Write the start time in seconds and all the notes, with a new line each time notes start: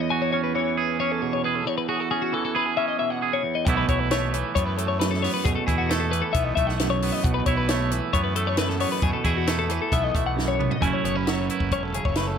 Already playing: E2 E3 B3 E4
0.00 D#5
0.10 F#4 G#5
0.22 C#5
0.32 C#4 C#5
0.44 B4
0.55 E3 C#5
0.77 G#4 B4
1.00 C#4 C#5
1.12 A4
1.22 B2 G#4
1.33 C#5
1.44 G#4 B4
1.55 A4
1.66 E2 C#5
1.78 B4
1.89 F#4 G#4
2.00 A4
2.11 C#4 G#4
2.22 F#4
2.32 E3 A4
2.45 A4
2.55 G#4 B4
2.66 G#4
2.77 C#4 E5
2.88 D#5
2.99 B2 E5
3.10 F#5
3.22 G#4
3.33 C#5
3.43 E2
3.55 D#5
3.65 B1 B2 E3 A3 B3 E4 F#5, kick, closed hi-hat
3.77 B4
3.88 B1 E4 C#5, kick, closed hi-hat
4.00 B4
4.11 A3 C#5, snare, closed hi-hat
4.33 E3 B4, closed hi-hat
4.55 F#2 B3 C#5, kick, closed hi-hat
4.66 B4
4.77 A3 A4, closed hi-hat
4.88 C#5
5.00 F#2 B4, snare, closed hi-hat
5.11 A4, snare
5.22 B3 C#5, snare, open hi-hat
5.34 B4
5.44 F#2 B2 G#4, kick, closed hi-hat
5.55 A4
5.67 E2 E4 G#4, kick, closed hi-hat
5.78 F#4
5.89 A3 A4, snare, closed hi-hat
6.00 A4
6.11 E3 B4, closed hi-hat
6.22 A4
6.33 B1 B3 E5, kick, closed hi-hat
6.44 D#5
6.55 B1 A3 E5, kick, closed hi-hat
6.67 F#5, snare
6.79 F#2, snare, closed hi-hat
6.90 C#5
7.02 B3, open hi-hat
7.12 D#5
7.24 B1 B2 F#5, kick, closed hi-hat
7.34 B4
7.46 B1 E4 C#5, kick, closed hi-hat
7.57 B4
7.69 A3 C#5, snare, closed hi-hat
7.91 E3 B4, closed hi-hat
8.13 F#2 B3 C#5, kick, closed hi-hat
8.24 B4
8.36 A3 A4, closed hi-hat
8.47 C#5
8.57 F#2 B4, snare, closed hi-hat
8.69 A4, snare
8.80 B3 C#5, open hi-hat
8.92 B4
9.02 F#2 B2 G#4, kick, closed hi-hat
9.13 A4
9.24 E2 E4 G#4, kick, closed hi-hat
9.37 F#4
9.47 A3 A4, snare, closed hi-hat
9.59 A4
9.69 E3 B4, closed hi-hat
9.82 A4
9.92 B1 B3 E5, kick, closed hi-hat
10.04 D#5
10.15 B1 A3 E5, kick, closed hi-hat
10.27 F#5
10.36 F#2, snare
10.48 C#5
10.59 B3, mid tom
10.71 D#5, floor tom
10.81 F#1 F#2 A3 C#4 E4 G#5, kick, closed hi-hat
10.93 C#5
11.04 F#1 B3 C#5, closed hi-hat
11.15 C#4 B4
11.27 F#3 C#5, snare, closed hi-hat
11.50 E4 B4, closed hi-hat
11.60 F#1, kick
11.71 E1 C#4 C#5, kick, closed hi-hat
11.83 A4
11.94 C#3 G#4, closed hi-hat
12.05 F#1 C#5, kick
12.15 A3 B4, snare, closed hi-hat
12.28 A4